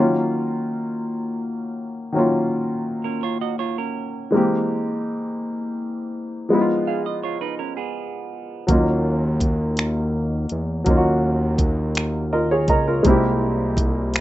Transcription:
Already playing: D#3 F#3 A#3
0.00 C#4 F4
2.12 D#3 F#3 A#3
2.17 C#4 F4
3.04 C#4 A#4
3.23 F4 C#5
3.41 F#4 D#5
3.59 F4 C#5
3.78 C#4 A#4
4.31 E3 G#3 A#3
4.35 C4 G4
6.49 F3 G#3 B3
6.53 D#4 E4
6.61 F4
6.87 G#4 F5
7.06 D#5
7.24 F4 C#5
7.41 D#4 B4
7.59 C#4 A#4
7.77 B3 G#4
8.67 D#2 F#3 A#3 C#4, kick, closed hi-hat
8.71 D#4 F4
9.40 kick, closed hi-hat
9.77 finger snap, closed hi-hat
10.49 E2, closed hi-hat
10.84 D#2 F#3 A#3 C#4, kick, closed hi-hat
10.89 D#4 F4
10.97 F#4
11.58 kick, closed hi-hat
11.95 finger snap, closed hi-hat
12.33 F4 A#4 D#5
12.51 G#4 C#5
12.68 C#2 A#4 D#5 A#5, kick, closed hi-hat
12.88 F4 A#4
13.03 C2 G#3 A#3 C4, kick, closed hi-hat
13.08 E4 G4
13.77 kick, closed hi-hat
14.14 finger snap, closed hi-hat

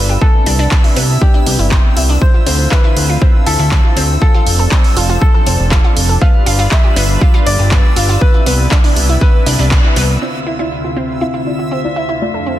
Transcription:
Already playing: G1 G3 D4 F4 B4 E6
0.09 G4
0.21 C3 B3 E4 A4, kick
0.46 C2 D4, open hi-hat
0.59 D4
0.71 kick, clap
0.84 E4, open hi-hat
0.96 C2 B3, open hi-hat
1.21 D4 G4, kick
1.34 D4
1.46 C2 D4, open hi-hat
1.59 G1 E4
1.71 C5, kick, clap
1.97 C2 E4, open hi-hat
2.09 D4
2.21 D3 C4 E4 F4 C5, kick
2.34 F4
2.46 D2 C4, open hi-hat
2.71 E4 B4, kick, clap
2.84 E4
2.97 D2, open hi-hat
3.09 F4
3.22 C4, kick
3.46 D2 E4 A4, open hi-hat
3.59 D2 E4
3.71 kick, clap
3.84 F4
3.96 D2 C4, open hi-hat
4.22 F3 D4 F4 A4, kick
4.34 F4
4.46 F1, open hi-hat
4.59 A4
4.71 C4, kick, clap
4.84 open hi-hat
4.96 F1 F4, open hi-hat
5.09 F4
5.21 A4, kick
5.34 A4
5.46 F1 C4, open hi-hat
5.59 F1
5.71 F4, kick, clap
5.84 F4
5.97 F1, open hi-hat
6.09 A4
6.21 G3 B3 F4 B4 F5, kick
6.46 G1 F4, open hi-hat
6.59 F4
6.71 E5, kick, clap
6.84 G4
6.96 G1 B3, open hi-hat
7.21 F4, kick
7.34 F4
7.46 G1 D5, open hi-hat
7.59 G1 G4
7.71 B3, kick, clap
7.96 G1 F4, open hi-hat
8.09 F4
8.21 C3 B3 E4 B4, kick
8.34 E4
8.46 C2 B3, open hi-hat
8.71 D4, kick, clap
8.84 D4, open hi-hat
8.96 C2, open hi-hat
9.09 E4
9.21 B3 B4, kick
9.46 C2 D4, open hi-hat
9.59 C2 D4
9.71 kick, clap
9.84 E4
9.96 C2 B3, open hi-hat
10.21 D2 C3 C4 E4 F4 D5 E5, crash
10.46 E4
10.59 C4 E4 F4 D5
10.72 cabasa
10.84 F4, cabasa
10.96 C4 E4 F4 F5
11.10 cabasa
11.21 C4 E4 F4 F5, cabasa
11.34 E4
11.46 C4 E4 F4 D5
11.59 F4, cabasa
11.71 C4, cabasa
11.84 C4 E4 F4 D5
11.96 E4
12.09 E4, cabasa
12.21 F2 D3 A3 F4 D5, cabasa
12.34 A4, cabasa
12.46 C4

